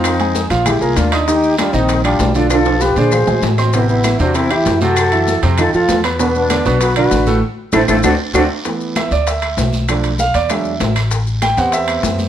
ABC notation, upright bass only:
X:1
M:4/4
L:1/8
Q:1/4=195
K:Bphr
V:1 name="Upright bass" clef=bass
=F,,3 _B,,,2 C,, _E,,2- | _E,,3 _B,,,3 =B,,,2- | B,,,3 _B,,,2 B,,, A,,,2- | A,,,3 E,,3 F,,2- |
F,,3 =F,,2 F,, E,,2- | E,,3 B,,,3 A,,,2 | z2 A,,, A,,, D,, z D,, z | z3 D,,3 B,,,2- |
B,,,3 E,,3 A,,,2- | A,,,3 E,,3 F,,2 |]